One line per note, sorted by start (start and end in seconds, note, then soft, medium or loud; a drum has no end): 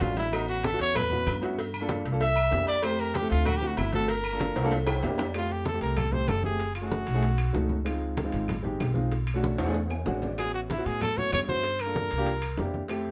0.00 0.74 A1 medium
0.00 0.23 G#3 medium
0.00 0.23 C#4 medium
0.00 0.23 D4 medium
0.00 0.17 F4 medium
0.00 0.23 F#4 medium
0.00 cowbell medium
0.00 high conga medium
0.00 low timbale medium
0.17 0.35 E4 medium
0.17 cowbell medium
0.17 low bongo medium
0.17 high conga soft
0.17 low agogo medium
0.32 0.60 B3 medium
0.32 0.60 C#4 medium
0.32 0.49 D#4 medium
0.32 0.60 E4 medium
0.32 0.61 F#4 medium
0.32 cowbell loud
0.32 high conga soft
0.32 low agogo loud
0.32 claves medium
0.48 0.67 F#4 medium
0.48 high conga soft
0.48 low agogo medium
0.63 0.81 A4 medium
0.63 cowbell medium
0.63 high conga loud
0.63 low agogo medium
0.72 1.00 B3 medium
0.72 1.00 C#4 medium
0.72 1.00 E4 medium
0.72 1.00 F#4 medium
0.79 1.24 E2 loud
0.79 0.98 C#5 loud
0.79 cowbell medium
0.95 1.43 B4 loud
0.95 cowbell loud
0.95 high conga soft
0.95 low conga medium
0.95 low agogo loud
0.95 claves medium
1.10 1.32 B3 medium
1.10 1.33 C#4 medium
1.10 1.33 E4 medium
1.10 1.33 F#4 medium
1.10 high conga soft
1.10 low conga medium
1.27 2.00 G2 medium
1.27 cowbell medium
1.27 high conga medium
1.27 low agogo loud
1.27 claves medium
1.42 1.58 B3 medium
1.42 1.58 C#4 medium
1.42 1.58 E4 medium
1.42 1.59 F#4 loud
1.42 cowbell medium
1.58 cowbell loud
1.58 high conga soft
1.58 low agogo medium
1.73 high conga soft
1.73 low agogo loud
1.73 claves medium
1.81 2.03 A#3 medium
1.81 2.04 D4 medium
1.81 2.04 F4 medium
1.81 2.04 A4 loud
1.89 cowbell medium
1.89 high conga loud
2.05 2.49 C2 loud
2.05 cowbell medium
2.05 high conga soft
2.12 2.20 A#3 medium
2.12 2.21 D4 medium
2.12 2.21 F4 medium
2.12 2.21 A4 loud
2.21 2.65 E5 loud
2.21 cowbell loud
2.21 low agogo medium
2.36 high conga soft
2.36 low agogo loud
2.36 claves medium
2.51 3.25 F2 medium
2.51 2.74 A#3 medium
2.51 2.74 D4 medium
2.51 2.74 E4 medium
2.51 2.74 G4 medium
2.51 cowbell medium
2.51 high conga medium
2.51 low timbale medium
2.67 2.86 D5 loud
2.67 cowbell medium
2.67 high conga soft
2.67 low agogo medium
2.82 3.10 A3 medium
2.82 3.11 C4 medium
2.82 3.11 E4 medium
2.82 3.11 G4 medium
2.82 3.01 C5 medium
2.82 cowbell loud
2.82 high conga soft
2.82 low agogo loud
2.82 claves medium
2.99 3.17 A#4 loud
2.99 high conga soft
2.99 low agogo medium
3.14 3.30 G4 medium
3.14 cowbell medium
3.14 high conga loud
3.14 low agogo medium
3.21 3.46 A3 medium
3.21 3.46 C4 medium
3.21 3.46 E4 medium
3.21 3.46 A4 medium
3.30 3.75 D2 loud
3.30 3.48 F4 loud
3.30 cowbell medium
3.45 3.58 F#4 loud
3.45 cowbell loud
3.45 high conga soft
3.45 low conga medium
3.45 low agogo loud
3.45 claves medium
3.57 3.69 G4 loud
3.61 3.83 A3 medium
3.61 3.84 C4 medium
3.61 3.84 E4 medium
3.61 3.84 F#4 medium
3.61 high conga soft
3.67 3.80 F#4 medium
3.77 4.51 G1 medium
3.77 3.93 E4 medium
3.77 cowbell medium
3.77 high conga medium
3.77 low agogo loud
3.77 claves medium
3.92 4.09 A3 medium
3.92 4.09 C4 medium
3.92 4.10 E4 medium
3.92 4.10 F#4 medium
3.92 4.11 A4 loud
3.92 cowbell medium
3.92 high conga medium
4.08 4.72 A#4 loud
4.08 cowbell loud
4.08 high conga soft
4.08 low agogo medium
4.24 high conga soft
4.24 low agogo loud
4.24 claves medium
4.32 4.54 A#3 medium
4.32 4.55 D4 medium
4.32 4.55 F4 medium
4.32 4.55 A4 medium
4.40 cowbell medium
4.40 high conga loud
4.56 5.00 C2 loud
4.56 cowbell medium
4.56 high timbale medium
4.64 4.72 A#3 loud
4.64 4.72 D4 loud
4.64 4.72 F4 loud
4.64 4.72 A4 loud
4.71 cowbell loud
4.71 high bongo medium
4.71 low agogo medium
4.87 5.02 G5 medium
4.87 high bongo loud
4.87 high conga soft
4.87 high timbale medium
4.87 low agogo loud
4.87 claves medium
5.02 5.76 F2 loud
5.02 5.25 A#3 medium
5.02 5.25 D4 medium
5.02 5.25 E4 medium
5.02 5.26 G4 loud
5.02 5.18 E5 medium
5.02 cowbell medium
5.02 high conga medium
5.02 low timbale medium
5.18 5.34 D5 medium
5.18 cowbell medium
5.18 low bongo loud
5.18 high conga soft
5.18 low timbale medium
5.18 low agogo medium
5.34 5.62 A3 medium
5.34 5.62 C4 medium
5.34 5.62 E4 medium
5.34 5.54 F4 medium
5.34 5.62 G4 medium
5.34 high bongo medium
5.34 high conga soft
5.34 high timbale medium
5.34 claves medium
5.51 5.67 G4 medium
5.51 high conga soft
5.65 5.81 A4 medium
5.65 high bongo medium
5.65 high conga loud
5.65 high timbale medium
5.73 6.01 A3 medium
5.73 6.01 C4 medium
5.73 6.01 E4 medium
5.73 6.02 G4 medium
5.81 6.25 C2 medium
5.81 5.99 A#4 medium
5.81 high timbale medium
5.97 6.15 A4 loud
5.97 high bongo medium
5.97 high conga soft
5.97 low conga medium
5.97 high timbale medium
5.97 claves medium
6.12 6.34 A3 medium
6.12 6.35 C4 medium
6.12 6.35 E4 medium
6.12 6.35 G4 medium
6.12 6.30 C5 medium
6.12 high conga soft
6.12 low conga medium
6.28 7.02 F#1 medium
6.28 6.44 A4 loud
6.28 high bongo medium
6.28 low bongo medium
6.28 high conga medium
6.28 high timbale medium
6.28 low timbale medium
6.28 claves medium
6.43 6.59 A3 medium
6.43 6.60 C4 medium
6.43 6.60 E4 medium
6.43 6.60 G4 medium
6.43 6.74 G#4 loud
6.43 high conga medium
6.59 high bongo medium
6.59 high conga soft
6.59 high timbale medium
6.75 7.67 F#4 medium
6.75 high conga soft
6.75 high timbale medium
6.75 claves medium
6.81 7.05 A3 medium
6.81 7.05 C#4 medium
6.81 7.05 E4 medium
6.81 7.05 G#4 medium
6.92 high bongo medium
6.92 high conga loud
7.07 7.52 B1 loud
7.07 high bongo soft
7.07 high conga soft
7.07 high timbale medium
7.14 7.23 A3 loud
7.14 7.23 C#4 medium
7.14 7.23 E4 medium
7.14 7.23 G#4 loud
7.23 high bongo medium
7.23 high timbale medium
7.38 high bongo soft
7.38 high conga soft
7.38 high timbale medium
7.38 claves medium
7.53 8.28 C#2 medium
7.53 7.76 A3 medium
7.53 7.76 C#4 medium
7.53 7.76 D#4 medium
7.53 7.76 F#4 medium
7.53 high bongo medium
7.53 low bongo medium
7.53 high conga medium
7.69 high bongo soft
7.69 high conga medium
7.85 8.13 G#3 medium
7.85 8.13 C4 medium
7.85 8.13 D#4 medium
7.85 8.14 F4 medium
7.85 high bongo medium
7.85 high conga soft
7.85 high timbale medium
7.85 claves medium
8.02 high conga soft
8.17 high bongo medium
8.17 high conga loud
8.17 high timbale medium
8.24 8.52 G#3 medium
8.24 8.53 C4 medium
8.24 8.53 D#4 medium
8.24 8.53 F4 loud
8.32 8.77 G#1 medium
8.32 high conga soft
8.32 high timbale medium
8.48 high bongo medium
8.48 high conga soft
8.48 low conga medium
8.48 high timbale medium
8.48 claves medium
8.63 8.86 G#3 medium
8.63 8.86 C4 medium
8.63 8.86 D#4 medium
8.63 8.87 G4 medium
8.63 high conga soft
8.63 low conga medium
8.80 9.54 B1 medium
8.80 high bongo medium
8.80 low bongo medium
8.80 high conga medium
8.80 high timbale medium
8.80 low timbale medium
8.80 claves medium
8.94 9.11 G#3 medium
8.94 9.11 C4 medium
8.94 9.11 D#4 medium
8.94 9.11 F4 loud
8.94 high conga medium
9.11 high bongo medium
9.11 high conga soft
9.11 high timbale medium
9.27 high conga soft
9.27 high timbale medium
9.27 claves medium
9.34 9.57 A3 medium
9.34 9.57 C#4 medium
9.34 9.58 D4 medium
9.34 9.58 F#4 loud
9.43 high bongo medium
9.43 high conga loud
9.58 10.03 E2 medium
9.58 high bongo soft
9.58 high conga soft
9.58 high timbale loud
9.66 9.74 A3 loud
9.66 9.75 C#4 medium
9.66 9.75 D4 loud
9.66 9.75 G#4 loud
9.74 high bongo medium
9.74 high conga soft
9.90 10.06 G#5 medium
9.90 high bongo soft
9.90 high conga soft
9.90 low timbale medium
9.90 claves medium
10.06 10.80 A1 medium
10.06 10.28 G#3 medium
10.06 10.28 C#4 medium
10.06 10.29 D4 medium
10.06 10.29 F#4 medium
10.06 10.21 F#5 medium
10.06 high bongo medium
10.06 low bongo medium
10.06 high conga medium
10.06 low timbale medium
10.22 10.37 D5 medium
10.22 high bongo soft
10.22 high conga medium
10.22 low timbale medium
10.38 10.66 B3 medium
10.38 10.66 C#4 medium
10.38 10.66 E4 medium
10.38 10.66 F#4 medium
10.38 10.53 G#4 loud
10.38 high bongo medium
10.38 high conga soft
10.38 high timbale medium
10.38 claves medium
10.54 10.61 F#4 medium
10.54 high conga soft
10.70 10.87 E4 medium
10.70 high bongo medium
10.70 high conga loud
10.70 high timbale medium
10.77 11.05 B3 medium
10.77 11.05 C#4 medium
10.77 11.05 E4 medium
10.77 11.05 F#4 medium
10.86 11.29 A2 medium
10.86 11.01 G#4 medium
10.86 high conga soft
10.86 high timbale medium
11.01 11.19 A4 loud
11.01 high bongo medium
11.01 high conga soft
11.01 low conga medium
11.01 high timbale medium
11.01 claves medium
11.16 11.39 B3 medium
11.16 11.39 C#4 medium
11.16 11.39 E4 medium
11.16 11.39 F#4 medium
11.16 11.33 C#5 loud
11.16 high conga soft
11.16 low conga medium
11.32 12.06 G2 medium
11.32 11.40 C#5 loud
11.32 high bongo medium
11.32 low bongo medium
11.32 high conga medium
11.32 high timbale medium
11.32 low timbale medium
11.32 claves medium
11.47 11.64 B3 medium
11.47 11.64 C#4 medium
11.47 11.64 E4 medium
11.47 11.64 F#4 medium
11.47 11.83 C5 loud
11.47 high conga medium
11.63 high bongo medium
11.63 high conga soft
11.63 high timbale medium
11.79 12.75 A#4 loud
11.79 high conga soft
11.79 high timbale medium
11.79 claves medium
11.86 12.09 A#3 medium
11.86 12.09 D4 medium
11.86 12.09 F4 medium
11.86 12.10 A4 medium
11.95 high bongo medium
11.95 high conga loud
12.11 12.55 C2 medium
12.11 high bongo soft
12.11 high conga soft
12.11 high timbale medium
12.18 12.26 A#3 loud
12.18 12.26 D4 loud
12.18 12.27 F4 medium
12.18 12.27 G4 loud
12.26 high bongo medium
12.26 high conga soft
12.26 high timbale medium
12.42 high bongo soft
12.42 high conga soft
12.42 high timbale medium
12.42 claves medium
12.57 13.11 F2 medium
12.57 12.80 A#3 medium
12.57 12.81 D4 medium
12.57 12.81 E4 medium
12.57 12.81 G4 medium
12.57 high bongo medium
12.57 low bongo medium
12.57 high conga medium
12.57 low timbale medium
12.73 high bongo soft
12.73 high conga medium
12.88 13.11 A3 medium
12.88 13.11 C4 medium
12.88 13.11 E4 medium
12.88 13.11 G4 medium
12.88 high bongo medium
12.88 high conga soft
12.88 high timbale medium
12.88 claves medium
13.06 high conga soft